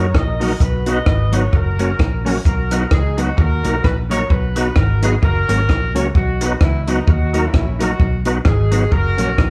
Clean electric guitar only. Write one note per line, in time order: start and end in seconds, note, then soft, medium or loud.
0.41 0.51 F#3 medium
0.41 0.52 A#3 medium
0.41 0.52 D#4 medium
0.41 0.52 F#4 loud
0.87 0.97 F#3 medium
0.87 0.98 B3 loud
0.87 0.98 D#4 medium
0.87 0.98 F#4 loud
1.32 1.43 F#3 medium
1.32 1.43 B3 medium
1.32 1.44 D#4 medium
1.32 1.44 F#4 medium
1.78 1.89 F#3 medium
1.78 1.90 A#3 medium
1.78 1.90 C#4 loud
1.78 1.90 F#4 medium
2.25 2.36 F#3 medium
2.25 2.36 A#3 medium
2.25 2.36 C#4 medium
2.25 2.37 F#4 medium
2.71 2.82 F#3 medium
2.71 2.82 B3 medium
2.71 2.83 D#4 loud
2.71 2.83 F#4 medium
3.17 3.28 F#3 medium
3.17 3.28 B3 medium
3.17 3.29 D#4 medium
3.17 3.29 F#4 medium
3.64 3.74 F#3 medium
3.64 3.74 A#3 medium
3.64 3.75 D#4 medium
3.64 3.75 F#4 medium
4.10 4.20 F#3 medium
4.10 4.21 A#3 medium
4.10 4.21 D#4 medium
4.10 4.21 F#4 medium
4.57 4.67 F#3 medium
4.57 4.67 B3 medium
4.57 4.67 D#4 medium
4.57 4.68 F#4 loud
5.02 5.13 F#3 medium
5.02 5.13 B3 medium
5.02 5.14 D#4 loud
5.02 5.14 F#4 medium
5.49 5.59 F#3 medium
5.49 5.60 A#3 medium
5.49 5.60 C#4 medium
5.49 5.60 F#4 medium
5.95 6.05 F#3 medium
5.95 6.06 A#3 medium
5.95 6.06 C#4 medium
5.95 6.06 F#4 medium
6.41 6.52 F#3 medium
6.41 6.52 B3 loud
6.41 6.52 D#4 medium
6.41 6.52 F#4 medium
6.88 6.98 F#3 medium
6.88 6.98 B3 medium
6.88 6.98 D#4 loud
6.88 6.99 F#4 medium
7.34 7.44 F#3 medium
7.34 7.44 A#3 medium
7.34 7.44 D#4 medium
7.34 7.45 F#4 medium
7.80 7.90 F#3 loud
7.80 7.91 A#3 medium
7.80 7.91 D#4 medium
7.80 7.91 F#4 loud
8.26 8.36 F#3 medium
8.26 8.36 B3 medium
8.26 8.37 D#4 medium
8.26 8.37 F#4 medium
8.71 8.82 F#3 medium
8.71 8.83 B3 medium
8.71 8.83 D#4 medium
8.71 8.83 F#4 medium
9.18 9.29 F#3 medium
9.18 9.29 A#3 medium
9.18 9.29 C#4 medium
9.18 9.29 F#4 medium